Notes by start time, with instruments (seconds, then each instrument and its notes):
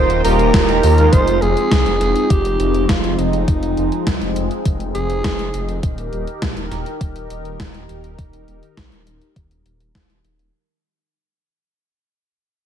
Already playing: detuned saw bass D#1, analog synth pad D#3 A#3 F4 G5, analog polysynth D#4 F4 C5, tenor saxophone C5
0.10 closed hi-hat
0.24 detuned saw bass D#1, analog polysynth D#4 F4 G4, tenor saxophone A#4, open hi-hat
0.39 closed hi-hat
0.54 detuned saw bass D#1, analog polysynth D#4 F4 G4, kick, snare, closed hi-hat
0.69 closed hi-hat
0.83 detuned saw bass D#2, open hi-hat
0.98 analog polysynth G#3 D#4 F4, closed hi-hat
1.13 detuned saw bass F1, analog synth pad F3 G#3 C4 D#4, tenor saxophone C5, kick, closed hi-hat
1.28 closed hi-hat
1.42 detuned saw bass F1, tenor saxophone G#4, closed hi-hat
1.57 closed hi-hat
1.71 detuned saw bass C2, kick, snare, closed hi-hat
1.86 detuned saw bass F1, closed hi-hat
2.01 detuned saw bass F1, snare, closed hi-hat
2.16 closed hi-hat
2.30 detuned saw bass F1, tenor saxophone G4, kick, closed hi-hat
2.45 closed hi-hat
2.60 detuned saw bass F1, closed hi-hat
2.74 closed hi-hat
2.89 detuned saw bass F1, tenor saxophone F4, kick, snare, closed hi-hat
3.04 closed hi-hat
3.18 detuned saw bass F1, tenor saxophone D#4, closed hi-hat
3.33 closed hi-hat
3.48 detuned saw bass F1, kick, closed hi-hat
3.63 closed hi-hat
3.77 detuned saw bass F1, closed hi-hat
3.92 closed hi-hat
4.07 detuned saw bass C2, kick, snare, closed hi-hat
4.21 detuned saw bass F1, closed hi-hat
4.36 detuned saw bass F1, closed hi-hat
4.51 closed hi-hat
4.65 detuned saw bass F1, kick, closed hi-hat
4.80 closed hi-hat
4.95 detuned saw bass F1, tenor saxophone G#4, closed hi-hat
5.10 closed hi-hat
5.24 detuned saw bass F1, kick, snare, closed hi-hat
5.39 closed hi-hat
5.54 detuned saw bass F1, closed hi-hat
5.69 closed hi-hat
5.83 detuned saw bass D#1, analog synth pad D#3 D#4 G4 A#4, kick, closed hi-hat
5.98 closed hi-hat
6.13 detuned saw bass D#1, closed hi-hat
6.27 closed hi-hat
6.42 detuned saw bass A#1, kick, snare, closed hi-hat
6.57 detuned saw bass D#1, closed hi-hat
6.71 detuned saw bass D#1, snare, closed hi-hat
6.86 closed hi-hat
7.01 detuned saw bass D#1, kick, closed hi-hat
7.16 closed hi-hat
7.30 detuned saw bass D#1, closed hi-hat
7.45 closed hi-hat
7.60 detuned saw bass D#1, kick, snare, closed hi-hat
7.74 closed hi-hat
7.89 detuned saw bass D#1, closed hi-hat
8.04 closed hi-hat
8.18 detuned saw bass D#1, kick, closed hi-hat
8.33 closed hi-hat
8.48 detuned saw bass D#1, closed hi-hat
8.63 closed hi-hat
8.77 detuned saw bass A#1, kick, snare, closed hi-hat
8.92 detuned saw bass D#1, closed hi-hat
9.07 detuned saw bass D#1, closed hi-hat
9.21 closed hi-hat
9.36 detuned saw bass D#1, kick, closed hi-hat
9.51 closed hi-hat
9.66 detuned saw bass D#1, closed hi-hat
9.80 closed hi-hat
9.95 detuned saw bass D#1, kick, snare, closed hi-hat
10.10 closed hi-hat
10.24 detuned saw bass D#1, closed hi-hat
10.39 closed hi-hat